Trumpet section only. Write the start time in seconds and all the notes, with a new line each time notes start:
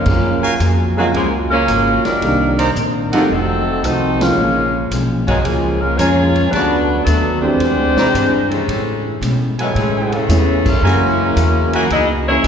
0.43 F#4 A#4 F5 G#5
0.97 F#4 A#4 F5 G#5
2.59 D#4 C5 D5 A#5
3.13 F4 A4 D#5 F#5
5.28 F4 A#4 C#5 G#5
5.99 F4 A#4 C#5 G#5
6.53 F#4 B4 D5 A5
7.97 E4 C5 D5 A#5
9.59 E4 A4 C#5 G#5
10.83 F#4 A#4 E5 G#5
11.74 F#4 A#4 E5 G#5
12.44 F#4 A#4